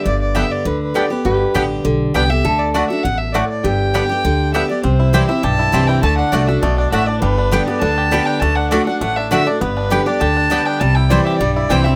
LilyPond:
<<
  \new Staff \with { instrumentName = "Fiddle" } { \time 4/4 \key g \major \tempo 4 = 201 d''8 d''8 e''8 d''8 b'8 b'8 d''8 b'8 | b'4 r2 g''8 e''8~ | e''8 d''8 d''8 e''8 fis''8 e''8 d''8 d''8 | g''2. e''8 d''8 |
c''4. e''8 a''4. g''8 | a''8 fis''8 d''8 e''8 d''8 d''8 e''8 d''8 | b'4. d''8 a''4. g''8 | a''8 fis''8 d''8 fis''8 fis''8 e''8 e''8 d''8 |
b'4. d''8 a''4. g''8 | a''8 g''8 d''8 e''8 d''8 d''8 g''8 e''8 | }
  \new Staff \with { instrumentName = "Mandolin" } { \time 4/4 \key g \major r4 <b g' d'' g''>8 r4. <b g' d'' g''>8 r8 | r4 <b g' d'' g''>8 r4. <b g' d'' g''>8 r8 | r4 <a fis' d'' fis''>8 r4. <a fis' d'' fis''>8 r8 | r4 <b g' d'' g''>8 r4. <b g' d'' g''>8 r8 |
r4 <c' e' c'' g''>8 r4. <c' e' c'' g''>8 r8 | r4 <a fis' d'' fis''>8 r4. <a fis' d'' fis''>8 r8 | r4 <b g' d'' g''>8 r4. <b g' d'' g''>8 r8 | r4 <a fis' d'' fis''>8 r4. <a fis' d'' fis''>8 r8 |
r4 <b g' d'' g''>8 r4. <b g' d'' g''>8 r8 | r4 <c' e' c'' g''>8 r4. <c' e' c'' g''>8 r8 | }
  \new Staff \with { instrumentName = "Resonator guitar played with a steel bar" } { \time 4/4 \key g \major b'1 | g'1 | a'1 | g'2.~ g'8 r8 |
r1 | r1 | r1 | r1 |
r1 | r1 | }
  \new Staff \with { instrumentName = "Five-string banjo" } { \time 4/4 \key g \major r4 <g b d'>8 r4. <g b d'>8 r8 | r4 <g b d'>8 r4. <g b d'>8 r8 | r4 <a d'>8 r4. <a d'>8 r8 | r4 <g b d'>8 r4. <g b d'>8 r8 |
c'8 e'8 g'8 e'8 g'8 e'8 c'8 e'8 | a8 d'8 a8 d'8 a8 d'8 d'8 d'8 | g8 d'8 g8 b8 d'8 g'8 g8 d'8 | a8 d'8 a8 d'8 a8 d'8 d'8 d'8 |
b8 d'8 g'8 d'8 g'8 d'8 b8 d'8 | g8 e'8 g8 g'8 g8 e'8 g8 c'8 | }
  \new Staff \with { instrumentName = "Steel-string acoustic guitar" } { \time 4/4 \key g \major << { r4 <d g b g'>4 r4 <d g b g'>8 <b g'>8 | r4 <d g b g'>4 r4 <d g b g'>8 <b g'>8 | r4 <d a d' fis'>8 <d' fis'>8 r2 | r4 <d g b g'>8 <b g'>8 r4 <d g b g'>8 <b g'>8 |
r4 <e g c' e'>8 <c' e'>8 r4 <e g c' e'>4 | r4 <d a d' fis'>8 <d' fis'>8 r2 | r4 <d g b g'>8 <b g'>8 r4 <d g b g'>4 | r4 <d a d' fis'>8 <d' fis'>8 r4 <d a d' fis'>8 <d' fis'>8 |
r4 <d g b g'>8 <b g'>8 r4 <d g b g'>4 | r4 <e g c' e'>4 r4 <e g c' e'>8 <c' e'>8 | } \\ { g,2 d2 | g,2 d2 | d2 b,4 a,4 | g,2 d2 |
c2 g,2 | d2 b,4 a,4 | g,2 d2 | d2 a,2 |
g,2 d2 | c2 g,2 | } >> }
  \new Staff \with { instrumentName = "Upright bass" } { \clef bass \time 4/4 \key g \major g,,2 d,2 | g,,4 a,,4 b,,4 c,4 | d,2 a,,2 | g,,2 d,2 |
c,2 b,,4 c,4 | d,4 c,4 b,,4 a,,4 | g,,2 d,2 | d,2 a,,2 |
g,,2 d,2 | c,2 b,,4 c,4 | }
>>